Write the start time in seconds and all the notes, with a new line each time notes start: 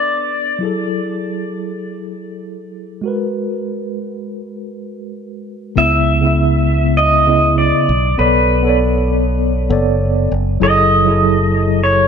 Already playing: B3 D4 A4 B4 D5
0.59 F#3 E4
0.63 G#4 A4
3.02 G#3 F#4
3.06 A#4 B4
5.76 C#2 C#3 B3 E4 E5
6.21 C#3 B3 E4
6.27 E5
6.97 D#5
7.27 C#3 B3 E4 D#5
7.58 D5
7.89 B1
8.18 B1 B3 A4 B4 C#5 D5
8.63 B3 A4
8.67 C#5 D5
9.69 F#1 B3 A4 C#5 D5
10.31 F#1
10.60 F#1 F#3 E4 G#4 A4 D#5
11.05 F#3 E4
11.09 G#4 A4
11.84 C#5